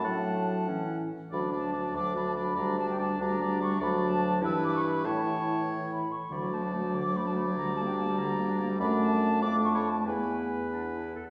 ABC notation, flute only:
X:1
M:6/8
L:1/16
Q:3/8=96
K:D
V:1 name="Flute"
a6 z6 | b2 a4 d'2 b a b2 | _b2 a g a2 b4 c'2 | b2 a4 e'2 d' c' b2 |
a6 z2 b2 c'2 | b2 a4 d'2 b a b2 | _b2 a g a2 b6 | [K:Dlyd] b2 a4 d'2 c' b a2 |
g6 z6 |]